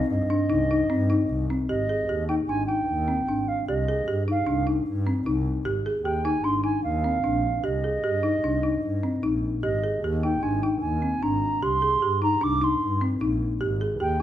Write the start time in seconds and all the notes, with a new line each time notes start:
Already playing: C4
0.10 G2 D#5
0.30 D4
0.50 C2 D#4
0.71 D#4
0.89 G2 C4
1.10 D#4
1.30 C2
1.50 C4
1.69 G#1 G4 D#5
1.89 G#4
2.09 D#2 G4
2.29 D#4 G5
2.48 G#1 D4 G#5
2.67 D#4 G5
2.88 D#2
3.08 C4
3.28 G#1 D4
3.48 F5
3.68 C2 G4 D#5
3.88 G#4
4.07 G2 G4
4.28 D#4 F5
4.47 C2 D4
4.67 D#4
4.87 G2
5.07 C4
5.26 C2 D#4
5.65 G#1 G4
5.86 G#4
6.04 D#2 G4 G5
6.24 D#4 G#5
6.44 G#1 D4 C6
6.64 D#4 G#5
6.84 D#2 F5
7.04 C4
7.24 A#1 D4
7.64 C2 G4 D#5
7.84 G#4
8.04 G2 G4
8.23 D#4
8.43 C2 D4
8.63 D#4
8.84 G2
9.03 C4
9.23 A#1 D#4
9.63 G#1 G4 D#5
9.84 G#4
10.04 D#2 G4
10.23 D#4 G5
10.43 G#1 D4 G#5
10.63 D#4 G5
10.81 D#2 G#5
11.02 C4
11.22 G#1 D4 A#5
11.62 C2 G4 C6
11.82 G#4
12.02 G2 G4
12.22 D#4 A#5
12.41 C2 D4 D6
12.61 D#4 C6
12.81 G2
13.01 C4
13.21 A#1 D#4
13.61 G#1 G4
13.81 G#4
14.00 D#2 G4 G5